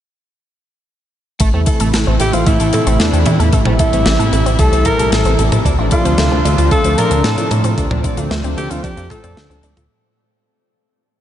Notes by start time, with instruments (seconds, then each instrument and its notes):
1.40 analog synth bass A1, analog synth pad C3 E3 A3 E4, overdriven electric guitar A3, synth arpeggio sound A3, kick, closed hi-hat
1.54 analog synth bass E2, overdriven electric guitar A3, synth arpeggio sound C4
1.66 synth arpeggio sound E4, overdriven electric guitar A4, kick, closed hi-hat
1.80 analog synth bass A1, overdriven electric guitar A3, synth arpeggio sound A4, closed hi-hat
1.93 analog synth bass A1, synth arpeggio sound A3, overdriven electric guitar E4, snare, closed hi-hat
2.07 analog synth bass A1, overdriven electric guitar A3, synth arpeggio sound C4
2.20 analog synth bass A1, synth arpeggio sound A3, overdriven electric guitar E4, alto saxophone G4, fm electric piano G5, closed hi-hat
2.33 analog synth bass A1, synth arpeggio sound C4, overdriven electric guitar E4, alto saxophone F4, fm electric piano F5, closed hi-hat
2.46 analog synth bass A1, overdriven electric guitar A3, synth arpeggio sound E4, alto saxophone E4, fm electric piano E5, kick, closed hi-hat
2.60 analog synth bass A1, overdriven electric guitar A3, synth arpeggio sound A4, closed hi-hat
2.73 synth arpeggio sound A3, overdriven electric guitar A4, closed hi-hat, mid tom
2.86 analog synth bass A1, overdriven electric guitar A3, synth arpeggio sound C4, closed hi-hat
3.00 analog synth bass E2, synth arpeggio sound A3, alto saxophone D4, overdriven electric guitar A4, fm electric piano D5, snare, closed hi-hat
3.13 analog synth bass E2, synth arpeggio sound C4, overdriven electric guitar A4, closed hi-hat
3.26 analog synth bass E2, overdriven electric guitar E4, synth arpeggio sound E4, closed hi-hat, mid tom
3.39 analog synth bass E2, overdriven electric guitar E4, synth arpeggio sound A4, closed hi-hat
3.53 analog synth bass A1, analog synth pad G3, synth arpeggio sound A3, overdriven electric guitar A3, kick, closed hi-hat
3.65 analog synth bass A1, overdriven electric guitar A3, synth arpeggio sound C4, mid tom
3.79 synth arpeggio sound A3, alto saxophone E4, overdriven electric guitar A4, fm electric piano E5, kick, closed hi-hat
3.93 analog synth bass A1, overdriven electric guitar A3, synth arpeggio sound C4, closed hi-hat
4.06 analog synth bass A1, overdriven electric guitar E4, synth arpeggio sound E4, snare, closed hi-hat
4.19 analog synth bass A1, overdriven electric guitar A3, synth arpeggio sound A4, closed hi-hat
4.33 analog synth bass A1, synth arpeggio sound A3, overdriven electric guitar E4, closed hi-hat
4.46 analog synth bass A1, synth arpeggio sound C4, overdriven electric guitar E4, closed hi-hat
4.59 analog synth bass C2, overdriven electric guitar A3, synth arpeggio sound A3, alto saxophone A4, fm electric piano A5, kick, closed hi-hat
4.72 analog synth bass C2, overdriven electric guitar A3, synth arpeggio sound C4, closed hi-hat
4.85 synth arpeggio sound E4, overdriven electric guitar A4, alto saxophone A#4, fm electric piano A#5, kick, closed hi-hat, mid tom
4.99 analog synth bass C2, overdriven electric guitar A3, synth arpeggio sound A4, closed hi-hat
5.12 analog synth bass A1, synth arpeggio sound A3, alto saxophone A4, overdriven electric guitar A4, fm electric piano A5, snare, closed hi-hat
5.25 analog synth bass A1, synth arpeggio sound C4, overdriven electric guitar A4, closed hi-hat
5.39 analog synth bass A1, synth arpeggio sound A3, overdriven electric guitar E4, closed hi-hat
5.52 analog synth bass A1, synth arpeggio sound C4, overdriven electric guitar E4, closed hi-hat, mid tom
5.65 analog synth bass D2, analog synth pad C3 F3 A3 D4, overdriven electric guitar D4, synth arpeggio sound D4, kick, closed hi-hat
5.78 analog synth bass A1, overdriven electric guitar D4, synth arpeggio sound F4
5.91 synth arpeggio sound A3, alto saxophone F4, overdriven electric guitar D5, fm electric piano F5, kick, closed hi-hat
6.05 analog synth bass D2, synth arpeggio sound C4, overdriven electric guitar D4, closed hi-hat
6.18 analog synth bass D2, synth arpeggio sound A3, overdriven electric guitar A4, snare, closed hi-hat
6.32 analog synth bass D2, synth arpeggio sound C4, overdriven electric guitar D4
6.45 analog synth bass D2, synth arpeggio sound D4, overdriven electric guitar A4, closed hi-hat
6.58 analog synth bass D2, synth arpeggio sound F4, overdriven electric guitar A4, closed hi-hat
6.71 analog synth bass D2, synth arpeggio sound A3, overdriven electric guitar D4, alto saxophone A4, fm electric piano A5, kick, closed hi-hat
6.84 analog synth bass D2, synth arpeggio sound C4, overdriven electric guitar D4, closed hi-hat
6.98 synth arpeggio sound A3, alto saxophone A#4, overdriven electric guitar D5, fm electric piano A#5, closed hi-hat, mid tom
7.11 analog synth bass D2, synth arpeggio sound C4, overdriven electric guitar D4, closed hi-hat
7.24 analog synth bass A2, synth arpeggio sound D4, alto saxophone A4, overdriven electric guitar D5, fm electric piano A5, snare, closed hi-hat
7.38 analog synth bass A2, synth arpeggio sound F4, overdriven electric guitar D5, closed hi-hat
7.51 analog synth bass A2, synth arpeggio sound A3, overdriven electric guitar A4, closed hi-hat, mid tom
7.64 analog synth bass A2, synth arpeggio sound C4, overdriven electric guitar A4, closed hi-hat
7.78 analog synth bass D2, synth arpeggio sound A3, analog synth pad C4, overdriven electric guitar D4, kick, closed hi-hat
7.91 analog synth bass D2, synth arpeggio sound C4, overdriven electric guitar D4, mid tom
8.04 synth arpeggio sound D4, overdriven electric guitar D5, kick, closed hi-hat
8.17 analog synth bass D2, overdriven electric guitar D4, synth arpeggio sound F4, closed hi-hat
8.31 analog synth bass D2, synth arpeggio sound A3, overdriven electric guitar A4, snare, closed hi-hat
8.44 analog synth bass D2, synth arpeggio sound C4, overdriven electric guitar D4, closed hi-hat
8.57 analog synth bass D2, synth arpeggio sound A3, alto saxophone G4, overdriven electric guitar A4, fm electric piano G5, closed hi-hat
8.71 analog synth bass D2, synth arpeggio sound C4, alto saxophone F4, overdriven electric guitar A4, fm electric piano F5, closed hi-hat
8.84 analog synth bass F2, synth arpeggio sound D4, overdriven electric guitar D4, alto saxophone G4, fm electric piano G5, kick, closed hi-hat
8.97 analog synth bass F2, overdriven electric guitar D4, synth arpeggio sound F4, closed hi-hat
9.10 synth arpeggio sound A3, overdriven electric guitar F4, alto saxophone A4, fm electric piano A5, kick, closed hi-hat, mid tom
9.24 analog synth bass F2, synth arpeggio sound C4, overdriven electric guitar D5, closed hi-hat
9.37 analog synth bass D2, synth arpeggio sound A3, overdriven electric guitar D4, snare, closed hi-hat
9.50 analog synth bass D2, synth arpeggio sound C4, overdriven electric guitar D4, closed hi-hat
9.63 analog synth bass D2, synth arpeggio sound D4, overdriven electric guitar D4, closed hi-hat
9.77 analog synth bass D2, synth arpeggio sound F4, overdriven electric guitar A4, closed hi-hat, mid tom